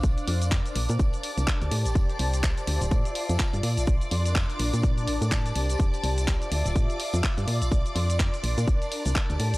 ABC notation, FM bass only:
X:1
M:4/4
L:1/16
Q:"Swing 16ths" 1/4=125
K:Bblyd
V:1 name="FM bass" clef=bass
B,,, z F,,3 z B,,, B,, A,,, z2 C,, z D,, A,, A,,, | F,,, z C,,3 z D,, D,,, A,, z2 F,, z G,, B,, B,,, | B,,, z F,,3 z B,,, B,,3 A,,, A,,3 C,,2 | F,,, z C,,3 z D,, D,,, A,, z2 F,, z G,, B,, B,,, |
B,,, z F,,3 z B,,, B,, A,,, z2 C,, z D,, A,, A,,, |]